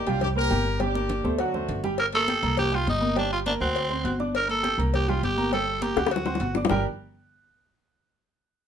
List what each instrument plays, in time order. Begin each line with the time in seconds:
0.07 upright bass C2, grand piano G3 G4 G5, horn section D4 F4, cowbell, high conga
0.21 horn section D#4 G4, cowbell, high conga, low conga
0.35 grand piano A#3 A#4 C5, horn section G4 A#4, high conga
0.50 upright bass G1, grand piano G3 G4 G5, cowbell, high conga
0.66 high conga
0.80 grand piano G3 G4 G5, horn section D4 G4, cowbell, high conga
0.95 grand piano A#3 A#4 D5, high conga
1.09 cowbell, low conga
1.24 upright bass D2, grand piano A3 A4 C5, high conga
1.38 grand piano F#3 F#4 F#5, horn section D4 F#4, cowbell
1.54 grand piano A3 A4 C5, low conga
1.69 upright bass G1, cowbell, low conga
1.84 grand piano G3 G4 G5, low conga
1.98 tenor saxophone A#4, cowbell, high conga
2.13 grand piano A#3 A#4 A#5, tenor saxophone A4, cowbell, high conga
2.28 grand piano G4 G5 G6, cowbell, high conga
2.43 upright bass C2, grand piano A#3 A#4 A#5, cowbell, high conga
2.57 tenor saxophone G4, cowbell, high conga, low conga
2.72 grand piano G3 G4 G5, tenor saxophone F4, high conga
2.87 upright bass G1, tenor saxophone D#4, cowbell, high conga
3.01 grand piano A#3 A#4 A#5, high conga
3.16 grand piano G3 G4 G5, tenor saxophone D4, cowbell, high conga
3.32 tenor saxophone F4, high conga
3.46 grand piano A#3 A#4 A#5, tenor saxophone D4, cowbell, high conga
3.60 upright bass D2, tenor saxophone C4, grand piano F#4 F#5 F#6, high conga
3.76 cowbell, high conga
3.90 grand piano C4 C5 C6, high conga
4.04 upright bass G1, grand piano F#4 F#5 F#6, cowbell, high conga
4.20 grand piano D4 D5 D6, high conga
4.35 tenor saxophone A#4, cowbell
4.48 grand piano A#3 A#4 A#5, tenor saxophone A4, cowbell
4.63 grand piano G4 G5 G6, cowbell, high conga
4.78 upright bass C2, grand piano A#3 A#4 A#5, cowbell, high conga
4.94 tenor saxophone G4, cowbell, high conga, low conga
5.08 grand piano G3 G4 G5, tenor saxophone F4, high conga, low conga
5.23 upright bass G1, tenor saxophone G4, cowbell, high conga
5.37 grand piano A#3 A#4 A#5, high conga
5.52 grand piano G3 G4 G5, tenor saxophone A4, cowbell, high conga
5.67 high conga
5.82 grand piano A#3 A#4 A#5, tenor saxophone G4, cowbell, high conga
5.96 upright bass D2, grand piano F#4 F#5 F#6, high bongo, high conga
6.07 high bongo
6.11 tenor saxophone F#4, cowbell, high conga
6.16 low bongo
6.25 grand piano C4 C5 C6, low bongo, high conga
6.35 low bongo
6.40 upright bass G1, grand piano F#4 F#5 F#6, cowbell, high conga
6.55 grand piano D4 D5 D6, low bongo, high conga
6.65 low bongo
6.69 upright bass G1, grand piano G3 D4 G4 A#4 D5 G5, tenor saxophone A#4, low bongo, low conga